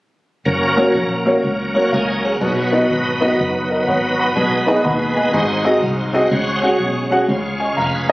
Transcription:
0.45 fingered electric bass F#1, tonewheel organ F#3 A#3 C#4 A#4
0.77 upright piano A#3 C#4 F#4 C#5
0.95 fingered electric bass A#1
1.26 upright piano A#3 C#4 F#4 C#5
1.44 fingered electric bass C#2
1.74 upright piano A#3 C#4 F#4 C#5, tonewheel organ C#5 F#5
1.92 fingered electric bass C#2, upright piano A#4 F5, tonewheel organ D#5 G#5
2.24 upright piano G#4 C#5, tonewheel organ C#5 F#5
2.41 fingered electric bass B1, upright piano B2, tonewheel organ F#3 B3 D#4 A#4
2.47 tonewheel organ B4
2.72 upright piano B3 D#4 F#4 D#5
2.90 fingered electric bass G#1
3.21 upright piano B3 D#4 F#4 D#5
3.39 fingered electric bass F#1
3.70 upright piano A#4 D#5
3.87 fingered electric bass G#1, upright piano C#5 F#5
4.19 upright piano F#5 B5
4.36 fingered electric bass B1, upright piano B2, tonewheel organ G#3 B3 D#4 B4
4.66 upright piano B3 D#4 G#4 D#5
4.85 fingered electric bass D#2, upright piano F#5 B5
5.16 upright piano D#5 G#5
5.33 fingered electric bass G#1, upright piano G#2, tonewheel organ G#3 D#4 F#4 C5
5.64 upright piano C4 F#4 G#4 D#5, tonewheel organ A#4 D#5
5.82 fingered electric bass C2, tonewheel organ C5 F5
6.13 upright piano C4 F#4 G#4 D#5, tonewheel organ C5 F#5
6.31 fingered electric bass C#2, upright piano C#3, tonewheel organ G#3 C#4 F#4 C#5
6.62 upright piano C#4 F#4 G#4 F#5
6.80 fingered electric bass B1
7.10 upright piano C#4 F#4 G#4 F#5
7.28 fingered electric bass C#2, upright piano C#3, tonewheel organ G#3 C#4 F4 C5
7.35 tonewheel organ C#5
7.60 upright piano D#5 G#5
7.77 fingered electric bass F1, tonewheel organ B4 F5, upright piano F5 A#5
8.08 tonewheel organ C#5, upright piano G#5

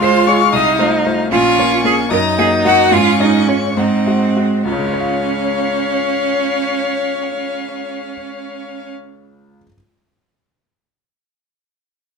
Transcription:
Already playing: grand piano C#2, viola F4, violin F5
0.00 grand piano G#3 F4 G#4, cello C5, violin C6
0.27 grand piano G#3 F4 G#4, cello C#5, violin C#6
0.53 grand piano C2, viola D#4, cello D#5, violin D#6
0.79 grand piano A3 F4 C5
1.06 grand piano A3 F4 C5
1.31 grand piano A#1, viola C#4, cello F4, violin F5 C#6
1.58 grand piano A#3 F4 C#5
1.84 grand piano A#3 F4 C#5, cello G#4, violin G#5
2.10 grand piano F#2, viola D#4, cello A#4, violin A#5 D#6
2.38 grand piano A#3 F#4 D#5, cello G#4, violin G#5
2.65 grand piano A#3 F#4 D#5, cello F#4, violin F#5
2.91 grand piano G#2, viola C#4, cello F4, violin F5 C#6
3.20 grand piano G#3 F4 C#5, cello D#4, violin D#5
3.48 grand piano G#3 F4 C#5, cello C#4, violin C#5
3.77 grand piano G#2, cello C4, viola D#4, violin C5 F#5
4.06 grand piano G#3 F#4 D#5
4.36 grand piano G#3 F#4 D#5
4.64 grand piano C#2, cello C#4, violin C#5 F5, viola C#5
4.72 grand piano C#3
4.79 grand piano G#3
4.86 grand piano F4
4.93 grand piano C#5
5.00 grand piano F5

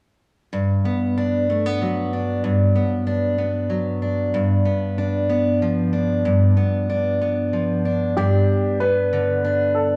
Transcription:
0.53 steel-string acoustic guitar G2
0.85 steel-string acoustic guitar B3
1.17 steel-string acoustic guitar D4
1.50 steel-string acoustic guitar A3
1.66 steel-string acoustic guitar B3
1.82 steel-string acoustic guitar F#3
2.13 steel-string acoustic guitar D4
2.44 steel-string acoustic guitar G2
2.76 steel-string acoustic guitar B3
3.07 steel-string acoustic guitar D4
3.38 steel-string acoustic guitar B3
3.70 steel-string acoustic guitar F#3
4.02 steel-string acoustic guitar D4
4.34 steel-string acoustic guitar G2
4.65 steel-string acoustic guitar B3
4.98 steel-string acoustic guitar D4
5.29 steel-string acoustic guitar B3
5.62 steel-string acoustic guitar F3
5.93 steel-string acoustic guitar D4
6.25 steel-string acoustic guitar G2
6.57 steel-string acoustic guitar B3
6.89 steel-string acoustic guitar D4
7.21 steel-string acoustic guitar B3
7.53 steel-string acoustic guitar F3
7.85 steel-string acoustic guitar D4
8.17 steel-string acoustic guitar G2 D4, grand piano G4
8.80 steel-string acoustic guitar B3, grand piano B4
9.13 steel-string acoustic guitar D3
9.44 steel-string acoustic guitar D4
9.75 grand piano A4

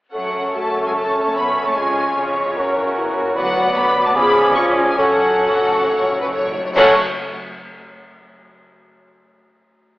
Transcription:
0.12 double bass section F#2, harp F#2, cello section F#3, bassoon A3, viola section C#4 A4, clarinet C#4, violin section A4 C#5 F#5, french horn section A4, cor anglais C#5, flute section C#6
0.36 harp C#3
0.55 cello section A3, french horn section F#4, harp A4, violin section A5
0.77 harp C#4
0.86 cello section G#3, violin section G#5
0.95 harp F#2, cello section A3, french horn section C#4, violin section A5
1.17 harp C#3
1.25 cello section A3, violin section A5
1.36 cello section B3, violin section B5
1.57 harp C#4
1.66 cello section A3, violin section A5
1.77 harp F2, double bass section F2, bassoon G#3, cello section G#3, viola section F4, violin section G#4 G#5
1.98 harp F3
2.18 cello section C#3, harp G#4, violin section C#5
2.38 harp C#4
2.57 double bass section E2, harp E2, bassoon F#3, viola section F#4, violin section A#4, cor anglais A#4
2.76 harp E3
2.96 french horn section E4, harp F#4
3.17 harp A#3
3.35 double bass section D2, harp D3, cello section F#3, clarinet B3, viola section B3, french horn section F#4, cor anglais B4, violin section B4 D5 F#5, flute section D6
3.56 harp D4
3.76 cello section B3, harp F#4, violin section B5
3.96 harp B3
4.05 cello section A3, violin section A5
4.15 double bass section C#2, harp C#3, bassoon F3, cello section B3, viola section C#4 F4, clarinet C#4, violin section G#4 B5, cor anglais G#4, french horn section G#4
4.36 harp C#4
4.55 cello section C#4, french horn section F4, harp F4, violin section C#6
4.77 harp G#3
4.88 cello section G#3, violin section G#5
4.97 timpani F#2, double bass section F#2, harp F#2, bassoon F#3, cello section F#3, viola section F#4, violin section A4 C#5 F#5, french horn section A4, cor anglais A4, flute section C#6
5.06 timpani F#2
5.15 timpani F#2
5.21 timpani F#2, harp C#3
5.40 timpani F#2, harp F#4, violin section A4
5.48 timpani F#2
5.56 timpani F#2
5.64 timpani F#2, harp A3
5.72 timpani F#2
5.80 timpani F#2
5.85 timpani F#2, harp F#2, violin section C#5
5.95 timpani F#2
6.05 timpani F#2
6.10 timpani F#2, harp C#3
6.20 timpani F#2, violin section B4
6.29 timpani F#2, harp F#4, violin section C#5
6.37 timpani F#2
6.46 timpani F#2
6.55 timpani F#2, harp A3
6.63 timpani F#2, violin section C#5
6.71 harp F#2 F#3, violin section A4
6.75 double bass section F#2, timpani F#2, bassoon F#3, cello section F#3, french horn section A3 C#4, harp A3 F#4 C#5, viola section C#4 F#4, clarinet C#4, cor anglais A4, violin section C#5 F#5, flute section C#6, concert bass drum, crash
6.82 harp F#5

